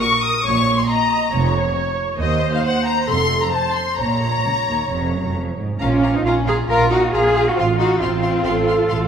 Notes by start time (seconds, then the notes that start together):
0.00 A#4 C#6
0.22 D#6
0.44 A#1 A#2 C#5 C#6
0.77 C6
0.88 D#5 A#5
1.32 F1 F2 C#5
2.20 D#2 C5 D#5
2.54 F5
2.65 F#5
2.86 A#5
3.08 F1 F2 A4 C6
3.42 A#5
3.53 C5 A5
3.75 C6
3.98 A#1 A#2 C#5 A#5
4.45 C#2
4.68 D#2
4.90 F1 F2
5.13 F#2
5.36 F2
5.58 G#2
5.80 A#1 A#3 C#4 F4 F5 A#5
6.03 F5 A#5
6.14 C4 D#4
6.24 A#1 C#4 F4 F5 A#5
6.45 F4 G#4 F5 A#5
6.68 A#1 F4 A#4 F5 A#5
6.90 D#4 F#4 F5 A#5
7.13 A#1 F4 G#4 F5 A#5
7.36 F5 A#5
7.45 D#4 F#4
7.55 A1 C4 F4 F5 C6
7.77 D#4 F#4 F5 C6
8.00 A1 C4 F4 F5 C6
8.22 F5 C6
8.45 A1 A4 F5 C6
8.68 F5 C6
8.88 A1 F5 C6